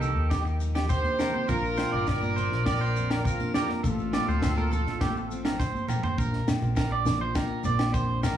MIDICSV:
0, 0, Header, 1, 8, 480
1, 0, Start_track
1, 0, Key_signature, -2, "major"
1, 0, Tempo, 585938
1, 1218, Time_signature, 4, 2, 24, 8
1, 6858, End_track
2, 0, Start_track
2, 0, Title_t, "Clean electric guitar"
2, 0, Program_c, 0, 27
2, 9, Note_on_c, 0, 69, 65
2, 241, Note_off_c, 0, 69, 0
2, 248, Note_on_c, 0, 67, 81
2, 362, Note_off_c, 0, 67, 0
2, 615, Note_on_c, 0, 67, 65
2, 730, Note_off_c, 0, 67, 0
2, 733, Note_on_c, 0, 72, 79
2, 963, Note_off_c, 0, 72, 0
2, 974, Note_on_c, 0, 70, 72
2, 1091, Note_off_c, 0, 70, 0
2, 1094, Note_on_c, 0, 72, 67
2, 1210, Note_off_c, 0, 72, 0
2, 1217, Note_on_c, 0, 70, 85
2, 1446, Note_off_c, 0, 70, 0
2, 1452, Note_on_c, 0, 72, 69
2, 1568, Note_off_c, 0, 72, 0
2, 1571, Note_on_c, 0, 74, 64
2, 1804, Note_off_c, 0, 74, 0
2, 1813, Note_on_c, 0, 70, 69
2, 1930, Note_off_c, 0, 70, 0
2, 1934, Note_on_c, 0, 72, 62
2, 2165, Note_off_c, 0, 72, 0
2, 2177, Note_on_c, 0, 74, 81
2, 2293, Note_off_c, 0, 74, 0
2, 2302, Note_on_c, 0, 72, 71
2, 2530, Note_off_c, 0, 72, 0
2, 2540, Note_on_c, 0, 70, 66
2, 2654, Note_off_c, 0, 70, 0
2, 2903, Note_on_c, 0, 74, 68
2, 3018, Note_off_c, 0, 74, 0
2, 3025, Note_on_c, 0, 70, 62
2, 3137, Note_off_c, 0, 70, 0
2, 3388, Note_on_c, 0, 74, 76
2, 3500, Note_off_c, 0, 74, 0
2, 3511, Note_on_c, 0, 72, 58
2, 3735, Note_off_c, 0, 72, 0
2, 3749, Note_on_c, 0, 70, 69
2, 3859, Note_off_c, 0, 70, 0
2, 3865, Note_on_c, 0, 69, 70
2, 4092, Note_off_c, 0, 69, 0
2, 4102, Note_on_c, 0, 67, 74
2, 4217, Note_off_c, 0, 67, 0
2, 4461, Note_on_c, 0, 70, 63
2, 4575, Note_off_c, 0, 70, 0
2, 4581, Note_on_c, 0, 72, 71
2, 4810, Note_off_c, 0, 72, 0
2, 4821, Note_on_c, 0, 70, 61
2, 4936, Note_off_c, 0, 70, 0
2, 4945, Note_on_c, 0, 72, 59
2, 5057, Note_off_c, 0, 72, 0
2, 5067, Note_on_c, 0, 70, 101
2, 5292, Note_off_c, 0, 70, 0
2, 5544, Note_on_c, 0, 70, 83
2, 5657, Note_off_c, 0, 70, 0
2, 5669, Note_on_c, 0, 74, 78
2, 5893, Note_off_c, 0, 74, 0
2, 5907, Note_on_c, 0, 72, 68
2, 6017, Note_off_c, 0, 72, 0
2, 6032, Note_on_c, 0, 70, 92
2, 6254, Note_off_c, 0, 70, 0
2, 6269, Note_on_c, 0, 74, 71
2, 6492, Note_off_c, 0, 74, 0
2, 6502, Note_on_c, 0, 72, 83
2, 6728, Note_off_c, 0, 72, 0
2, 6745, Note_on_c, 0, 70, 76
2, 6858, Note_off_c, 0, 70, 0
2, 6858, End_track
3, 0, Start_track
3, 0, Title_t, "Horn section"
3, 0, Program_c, 1, 61
3, 0, Note_on_c, 1, 63, 68
3, 0, Note_on_c, 1, 67, 81
3, 509, Note_off_c, 1, 67, 0
3, 518, Note_off_c, 1, 63, 0
3, 737, Note_on_c, 1, 72, 92
3, 739, Note_on_c, 1, 67, 67
3, 1185, Note_off_c, 1, 72, 0
3, 1186, Note_off_c, 1, 67, 0
3, 1208, Note_on_c, 1, 70, 103
3, 1217, Note_on_c, 1, 65, 78
3, 1694, Note_off_c, 1, 70, 0
3, 1698, Note_off_c, 1, 65, 0
3, 1702, Note_on_c, 1, 74, 100
3, 1711, Note_on_c, 1, 70, 84
3, 2171, Note_off_c, 1, 74, 0
3, 2180, Note_off_c, 1, 70, 0
3, 2181, Note_on_c, 1, 74, 104
3, 2190, Note_on_c, 1, 70, 83
3, 2629, Note_off_c, 1, 74, 0
3, 2633, Note_off_c, 1, 70, 0
3, 2659, Note_on_c, 1, 70, 90
3, 2664, Note_on_c, 1, 65, 66
3, 2883, Note_off_c, 1, 70, 0
3, 2886, Note_off_c, 1, 65, 0
3, 2899, Note_on_c, 1, 70, 80
3, 2906, Note_on_c, 1, 67, 63
3, 3008, Note_off_c, 1, 70, 0
3, 3013, Note_off_c, 1, 67, 0
3, 3147, Note_on_c, 1, 69, 87
3, 3150, Note_on_c, 1, 65, 66
3, 4552, Note_off_c, 1, 69, 0
3, 4554, Note_off_c, 1, 65, 0
3, 6858, End_track
4, 0, Start_track
4, 0, Title_t, "Steel-string acoustic guitar"
4, 0, Program_c, 2, 25
4, 0, Note_on_c, 2, 51, 76
4, 0, Note_on_c, 2, 58, 62
4, 255, Note_on_c, 2, 63, 55
4, 493, Note_off_c, 2, 63, 0
4, 498, Note_on_c, 2, 46, 58
4, 503, Note_on_c, 2, 63, 57
4, 732, Note_off_c, 2, 46, 0
4, 735, Note_on_c, 2, 50, 62
4, 974, Note_off_c, 2, 50, 0
4, 977, Note_on_c, 2, 48, 61
4, 1186, Note_off_c, 2, 58, 0
4, 1193, Note_off_c, 2, 63, 0
4, 1215, Note_off_c, 2, 51, 0
4, 1218, Note_off_c, 2, 48, 0
4, 1222, Note_on_c, 2, 46, 76
4, 1227, Note_on_c, 2, 58, 62
4, 1233, Note_on_c, 2, 62, 63
4, 1243, Note_on_c, 2, 65, 72
4, 1702, Note_on_c, 2, 53, 53
4, 1937, Note_off_c, 2, 62, 0
4, 1947, Note_on_c, 2, 62, 51
4, 2176, Note_off_c, 2, 58, 0
4, 2186, Note_on_c, 2, 58, 52
4, 2422, Note_off_c, 2, 46, 0
4, 2427, Note_off_c, 2, 65, 0
4, 2427, Note_on_c, 2, 41, 66
4, 2431, Note_on_c, 2, 65, 60
4, 2664, Note_off_c, 2, 62, 0
4, 2669, Note_on_c, 2, 60, 57
4, 2784, Note_off_c, 2, 60, 0
4, 2784, Note_on_c, 2, 62, 46
4, 3116, Note_off_c, 2, 58, 0
4, 3142, Note_off_c, 2, 62, 0
4, 3145, Note_off_c, 2, 41, 0
4, 3149, Note_on_c, 2, 45, 74
4, 3155, Note_on_c, 2, 57, 62
4, 3164, Note_on_c, 2, 60, 59
4, 3627, Note_off_c, 2, 53, 0
4, 3631, Note_on_c, 2, 53, 57
4, 3867, Note_off_c, 2, 60, 0
4, 3877, Note_on_c, 2, 60, 53
4, 4103, Note_off_c, 2, 57, 0
4, 4113, Note_on_c, 2, 57, 55
4, 4341, Note_off_c, 2, 45, 0
4, 4347, Note_off_c, 2, 60, 0
4, 4351, Note_on_c, 2, 45, 61
4, 4357, Note_on_c, 2, 60, 59
4, 4586, Note_off_c, 2, 45, 0
4, 4589, Note_on_c, 2, 43, 54
4, 4825, Note_off_c, 2, 43, 0
4, 4829, Note_on_c, 2, 45, 58
4, 5037, Note_off_c, 2, 53, 0
4, 5038, Note_off_c, 2, 57, 0
4, 5061, Note_on_c, 2, 46, 83
4, 5065, Note_off_c, 2, 45, 0
4, 5067, Note_off_c, 2, 65, 0
4, 5069, Note_off_c, 2, 60, 0
4, 5308, Note_on_c, 2, 62, 58
4, 5552, Note_on_c, 2, 67, 62
4, 5785, Note_on_c, 2, 53, 66
4, 6026, Note_on_c, 2, 58, 63
4, 6263, Note_off_c, 2, 62, 0
4, 6277, Note_on_c, 2, 62, 66
4, 6499, Note_off_c, 2, 46, 0
4, 6508, Note_on_c, 2, 41, 70
4, 6858, Note_off_c, 2, 41, 0
4, 6858, Note_off_c, 2, 53, 0
4, 6858, Note_off_c, 2, 58, 0
4, 6858, Note_off_c, 2, 62, 0
4, 6858, Note_off_c, 2, 67, 0
4, 6858, End_track
5, 0, Start_track
5, 0, Title_t, "Fingered electric bass"
5, 0, Program_c, 3, 33
5, 0, Note_on_c, 3, 36, 77
5, 136, Note_off_c, 3, 36, 0
5, 136, Note_on_c, 3, 39, 70
5, 877, Note_off_c, 3, 39, 0
5, 1224, Note_on_c, 3, 34, 85
5, 1501, Note_off_c, 3, 34, 0
5, 1586, Note_on_c, 3, 31, 83
5, 2073, Note_off_c, 3, 31, 0
5, 2073, Note_on_c, 3, 34, 70
5, 2808, Note_off_c, 3, 34, 0
5, 3150, Note_on_c, 3, 33, 93
5, 3425, Note_off_c, 3, 33, 0
5, 3507, Note_on_c, 3, 38, 71
5, 3983, Note_off_c, 3, 38, 0
5, 3983, Note_on_c, 3, 33, 65
5, 4722, Note_off_c, 3, 33, 0
5, 5063, Note_on_c, 3, 34, 87
5, 5247, Note_off_c, 3, 34, 0
5, 5424, Note_on_c, 3, 34, 90
5, 6068, Note_off_c, 3, 34, 0
5, 6265, Note_on_c, 3, 34, 98
5, 6816, Note_off_c, 3, 34, 0
5, 6858, End_track
6, 0, Start_track
6, 0, Title_t, "Muted clean electric guitar strokes"
6, 372, Note_on_c, 9, 29, 73
6, 454, Note_off_c, 9, 29, 0
6, 2660, Note_on_c, 9, 29, 68
6, 2742, Note_off_c, 9, 29, 0
6, 3142, Note_on_c, 9, 29, 90
6, 3223, Note_off_c, 9, 29, 0
6, 6858, End_track
7, 0, Start_track
7, 0, Title_t, "Shekere"
7, 18, Note_on_c, 9, 82, 64
7, 100, Note_off_c, 9, 82, 0
7, 259, Note_on_c, 9, 82, 82
7, 341, Note_off_c, 9, 82, 0
7, 380, Note_on_c, 9, 82, 23
7, 462, Note_off_c, 9, 82, 0
7, 494, Note_on_c, 9, 82, 65
7, 576, Note_off_c, 9, 82, 0
7, 619, Note_on_c, 9, 82, 24
7, 701, Note_off_c, 9, 82, 0
7, 733, Note_on_c, 9, 82, 83
7, 815, Note_off_c, 9, 82, 0
7, 856, Note_on_c, 9, 82, 25
7, 937, Note_off_c, 9, 82, 0
7, 978, Note_on_c, 9, 82, 59
7, 1059, Note_off_c, 9, 82, 0
7, 1219, Note_on_c, 9, 82, 77
7, 1301, Note_off_c, 9, 82, 0
7, 1344, Note_on_c, 9, 82, 23
7, 1426, Note_off_c, 9, 82, 0
7, 1452, Note_on_c, 9, 82, 63
7, 1534, Note_off_c, 9, 82, 0
7, 1695, Note_on_c, 9, 82, 83
7, 1777, Note_off_c, 9, 82, 0
7, 1819, Note_on_c, 9, 82, 25
7, 1901, Note_off_c, 9, 82, 0
7, 1943, Note_on_c, 9, 82, 65
7, 2025, Note_off_c, 9, 82, 0
7, 2184, Note_on_c, 9, 82, 77
7, 2266, Note_off_c, 9, 82, 0
7, 2302, Note_on_c, 9, 82, 25
7, 2384, Note_off_c, 9, 82, 0
7, 2425, Note_on_c, 9, 82, 62
7, 2507, Note_off_c, 9, 82, 0
7, 2554, Note_on_c, 9, 82, 24
7, 2636, Note_off_c, 9, 82, 0
7, 2677, Note_on_c, 9, 82, 93
7, 2759, Note_off_c, 9, 82, 0
7, 2791, Note_on_c, 9, 82, 24
7, 2873, Note_off_c, 9, 82, 0
7, 2911, Note_on_c, 9, 82, 68
7, 2993, Note_off_c, 9, 82, 0
7, 3151, Note_on_c, 9, 82, 93
7, 3233, Note_off_c, 9, 82, 0
7, 3268, Note_on_c, 9, 82, 26
7, 3350, Note_off_c, 9, 82, 0
7, 3391, Note_on_c, 9, 82, 64
7, 3473, Note_off_c, 9, 82, 0
7, 3516, Note_on_c, 9, 82, 26
7, 3598, Note_off_c, 9, 82, 0
7, 3629, Note_on_c, 9, 82, 87
7, 3711, Note_off_c, 9, 82, 0
7, 3750, Note_on_c, 9, 82, 26
7, 3832, Note_off_c, 9, 82, 0
7, 3867, Note_on_c, 9, 82, 76
7, 3948, Note_off_c, 9, 82, 0
7, 3990, Note_on_c, 9, 82, 26
7, 4072, Note_off_c, 9, 82, 0
7, 4108, Note_on_c, 9, 82, 82
7, 4190, Note_off_c, 9, 82, 0
7, 4234, Note_on_c, 9, 82, 24
7, 4315, Note_off_c, 9, 82, 0
7, 4352, Note_on_c, 9, 82, 60
7, 4434, Note_off_c, 9, 82, 0
7, 4473, Note_on_c, 9, 82, 26
7, 4555, Note_off_c, 9, 82, 0
7, 4593, Note_on_c, 9, 82, 91
7, 4675, Note_off_c, 9, 82, 0
7, 4716, Note_on_c, 9, 82, 25
7, 4798, Note_off_c, 9, 82, 0
7, 4829, Note_on_c, 9, 82, 73
7, 4911, Note_off_c, 9, 82, 0
7, 4950, Note_on_c, 9, 82, 26
7, 5032, Note_off_c, 9, 82, 0
7, 5076, Note_on_c, 9, 82, 72
7, 5157, Note_off_c, 9, 82, 0
7, 5310, Note_on_c, 9, 82, 92
7, 5392, Note_off_c, 9, 82, 0
7, 5429, Note_on_c, 9, 82, 27
7, 5511, Note_off_c, 9, 82, 0
7, 5543, Note_on_c, 9, 82, 76
7, 5625, Note_off_c, 9, 82, 0
7, 5784, Note_on_c, 9, 82, 99
7, 5866, Note_off_c, 9, 82, 0
7, 6023, Note_on_c, 9, 82, 73
7, 6105, Note_off_c, 9, 82, 0
7, 6257, Note_on_c, 9, 82, 89
7, 6338, Note_off_c, 9, 82, 0
7, 6506, Note_on_c, 9, 82, 84
7, 6588, Note_off_c, 9, 82, 0
7, 6748, Note_on_c, 9, 82, 101
7, 6830, Note_off_c, 9, 82, 0
7, 6858, End_track
8, 0, Start_track
8, 0, Title_t, "Drums"
8, 19, Note_on_c, 9, 64, 63
8, 101, Note_off_c, 9, 64, 0
8, 255, Note_on_c, 9, 68, 64
8, 256, Note_on_c, 9, 38, 63
8, 257, Note_on_c, 9, 36, 85
8, 337, Note_off_c, 9, 68, 0
8, 338, Note_off_c, 9, 36, 0
8, 338, Note_off_c, 9, 38, 0
8, 618, Note_on_c, 9, 68, 62
8, 621, Note_on_c, 9, 38, 61
8, 621, Note_on_c, 9, 64, 60
8, 700, Note_off_c, 9, 68, 0
8, 703, Note_off_c, 9, 38, 0
8, 703, Note_off_c, 9, 64, 0
8, 739, Note_on_c, 9, 36, 81
8, 739, Note_on_c, 9, 38, 25
8, 820, Note_off_c, 9, 38, 0
8, 821, Note_off_c, 9, 36, 0
8, 855, Note_on_c, 9, 63, 61
8, 937, Note_off_c, 9, 63, 0
8, 978, Note_on_c, 9, 64, 70
8, 979, Note_on_c, 9, 38, 62
8, 985, Note_on_c, 9, 68, 61
8, 1060, Note_off_c, 9, 64, 0
8, 1061, Note_off_c, 9, 38, 0
8, 1067, Note_off_c, 9, 68, 0
8, 1101, Note_on_c, 9, 63, 66
8, 1183, Note_off_c, 9, 63, 0
8, 1221, Note_on_c, 9, 36, 76
8, 1303, Note_off_c, 9, 36, 0
8, 1461, Note_on_c, 9, 38, 62
8, 1463, Note_on_c, 9, 63, 64
8, 1468, Note_on_c, 9, 68, 57
8, 1543, Note_off_c, 9, 38, 0
8, 1545, Note_off_c, 9, 63, 0
8, 1549, Note_off_c, 9, 68, 0
8, 1701, Note_on_c, 9, 38, 65
8, 1703, Note_on_c, 9, 36, 81
8, 1708, Note_on_c, 9, 68, 58
8, 1783, Note_off_c, 9, 38, 0
8, 1784, Note_off_c, 9, 36, 0
8, 1790, Note_off_c, 9, 68, 0
8, 1824, Note_on_c, 9, 63, 66
8, 1906, Note_off_c, 9, 63, 0
8, 1948, Note_on_c, 9, 64, 70
8, 2030, Note_off_c, 9, 64, 0
8, 2065, Note_on_c, 9, 38, 22
8, 2147, Note_off_c, 9, 38, 0
8, 2180, Note_on_c, 9, 38, 66
8, 2183, Note_on_c, 9, 36, 82
8, 2186, Note_on_c, 9, 68, 65
8, 2262, Note_off_c, 9, 38, 0
8, 2265, Note_off_c, 9, 36, 0
8, 2267, Note_off_c, 9, 68, 0
8, 2545, Note_on_c, 9, 38, 71
8, 2548, Note_on_c, 9, 68, 66
8, 2550, Note_on_c, 9, 64, 60
8, 2627, Note_off_c, 9, 38, 0
8, 2629, Note_off_c, 9, 68, 0
8, 2632, Note_off_c, 9, 64, 0
8, 2665, Note_on_c, 9, 36, 85
8, 2747, Note_off_c, 9, 36, 0
8, 2788, Note_on_c, 9, 63, 62
8, 2870, Note_off_c, 9, 63, 0
8, 2902, Note_on_c, 9, 38, 62
8, 2909, Note_on_c, 9, 68, 60
8, 2912, Note_on_c, 9, 64, 70
8, 2984, Note_off_c, 9, 38, 0
8, 2991, Note_off_c, 9, 68, 0
8, 2994, Note_off_c, 9, 64, 0
8, 3026, Note_on_c, 9, 38, 25
8, 3029, Note_on_c, 9, 63, 65
8, 3108, Note_off_c, 9, 38, 0
8, 3111, Note_off_c, 9, 63, 0
8, 3146, Note_on_c, 9, 36, 76
8, 3228, Note_off_c, 9, 36, 0
8, 3384, Note_on_c, 9, 38, 62
8, 3387, Note_on_c, 9, 63, 60
8, 3387, Note_on_c, 9, 68, 60
8, 3466, Note_off_c, 9, 38, 0
8, 3468, Note_off_c, 9, 68, 0
8, 3469, Note_off_c, 9, 63, 0
8, 3624, Note_on_c, 9, 38, 65
8, 3626, Note_on_c, 9, 36, 78
8, 3633, Note_on_c, 9, 68, 60
8, 3706, Note_off_c, 9, 38, 0
8, 3708, Note_off_c, 9, 36, 0
8, 3715, Note_off_c, 9, 68, 0
8, 3753, Note_on_c, 9, 63, 68
8, 3835, Note_off_c, 9, 63, 0
8, 3870, Note_on_c, 9, 64, 66
8, 3952, Note_off_c, 9, 64, 0
8, 3988, Note_on_c, 9, 38, 23
8, 4069, Note_off_c, 9, 38, 0
8, 4104, Note_on_c, 9, 38, 61
8, 4106, Note_on_c, 9, 36, 85
8, 4109, Note_on_c, 9, 63, 62
8, 4111, Note_on_c, 9, 68, 59
8, 4186, Note_off_c, 9, 38, 0
8, 4188, Note_off_c, 9, 36, 0
8, 4191, Note_off_c, 9, 63, 0
8, 4193, Note_off_c, 9, 68, 0
8, 4463, Note_on_c, 9, 38, 67
8, 4468, Note_on_c, 9, 64, 59
8, 4468, Note_on_c, 9, 68, 60
8, 4545, Note_off_c, 9, 38, 0
8, 4550, Note_off_c, 9, 64, 0
8, 4550, Note_off_c, 9, 68, 0
8, 4583, Note_on_c, 9, 38, 43
8, 4585, Note_on_c, 9, 36, 78
8, 4665, Note_off_c, 9, 38, 0
8, 4667, Note_off_c, 9, 36, 0
8, 4709, Note_on_c, 9, 63, 59
8, 4791, Note_off_c, 9, 63, 0
8, 4820, Note_on_c, 9, 64, 68
8, 4821, Note_on_c, 9, 45, 65
8, 4829, Note_on_c, 9, 68, 66
8, 4902, Note_off_c, 9, 64, 0
8, 4903, Note_off_c, 9, 45, 0
8, 4911, Note_off_c, 9, 68, 0
8, 4944, Note_on_c, 9, 43, 62
8, 4944, Note_on_c, 9, 63, 65
8, 5025, Note_off_c, 9, 43, 0
8, 5026, Note_off_c, 9, 63, 0
8, 5066, Note_on_c, 9, 36, 99
8, 5148, Note_off_c, 9, 36, 0
8, 5185, Note_on_c, 9, 38, 26
8, 5267, Note_off_c, 9, 38, 0
8, 5305, Note_on_c, 9, 63, 79
8, 5307, Note_on_c, 9, 38, 77
8, 5308, Note_on_c, 9, 68, 67
8, 5386, Note_off_c, 9, 63, 0
8, 5389, Note_off_c, 9, 38, 0
8, 5390, Note_off_c, 9, 68, 0
8, 5426, Note_on_c, 9, 63, 81
8, 5508, Note_off_c, 9, 63, 0
8, 5541, Note_on_c, 9, 68, 63
8, 5546, Note_on_c, 9, 36, 89
8, 5548, Note_on_c, 9, 38, 78
8, 5623, Note_off_c, 9, 68, 0
8, 5628, Note_off_c, 9, 36, 0
8, 5630, Note_off_c, 9, 38, 0
8, 5778, Note_on_c, 9, 63, 73
8, 5778, Note_on_c, 9, 64, 83
8, 5787, Note_on_c, 9, 38, 68
8, 5860, Note_off_c, 9, 63, 0
8, 5860, Note_off_c, 9, 64, 0
8, 5869, Note_off_c, 9, 38, 0
8, 6023, Note_on_c, 9, 68, 73
8, 6025, Note_on_c, 9, 36, 97
8, 6025, Note_on_c, 9, 38, 77
8, 6105, Note_off_c, 9, 68, 0
8, 6107, Note_off_c, 9, 36, 0
8, 6107, Note_off_c, 9, 38, 0
8, 6262, Note_on_c, 9, 63, 81
8, 6344, Note_off_c, 9, 63, 0
8, 6382, Note_on_c, 9, 68, 71
8, 6385, Note_on_c, 9, 38, 80
8, 6464, Note_off_c, 9, 68, 0
8, 6467, Note_off_c, 9, 38, 0
8, 6505, Note_on_c, 9, 36, 92
8, 6587, Note_off_c, 9, 36, 0
8, 6744, Note_on_c, 9, 38, 64
8, 6744, Note_on_c, 9, 63, 77
8, 6744, Note_on_c, 9, 64, 82
8, 6746, Note_on_c, 9, 68, 75
8, 6826, Note_off_c, 9, 38, 0
8, 6826, Note_off_c, 9, 63, 0
8, 6826, Note_off_c, 9, 64, 0
8, 6828, Note_off_c, 9, 68, 0
8, 6858, End_track
0, 0, End_of_file